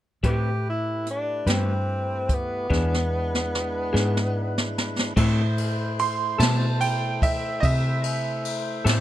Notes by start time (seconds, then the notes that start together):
0.23 A2 A3 C4 E4 G4 B4, kick, closed hi-hat
0.28 G4
0.69 E4
1.06 D4, closed hi-hat
1.46 G2 A3 C4 G4 B4, snare, closed hi-hat
1.51 C4
2.29 kick, closed hi-hat
2.34 B3
2.69 E2 E3 G#3 B3 D4 E4 G#4 B4, kick, snare
2.94 snare
3.35 snare
3.55 snare
3.93 G#2 E3 B3 D4 G#4, snare
4.17 snare
4.58 snare
4.78 snare
4.99 snare
5.16 A2 A3 C4 E4 A4 C5, kick, crash
5.58 ride
5.99 C6, ride
6.38 B2 A3 C4 E4 A4 A5, ride
6.43 snare
6.81 G5, ride
7.22 E5, kick, ride
7.60 C3 D#5, kick, ride
7.65 E5
8.04 ride
8.45 ride
8.85 A2 A3 C4 E4 A4, ride
8.89 snare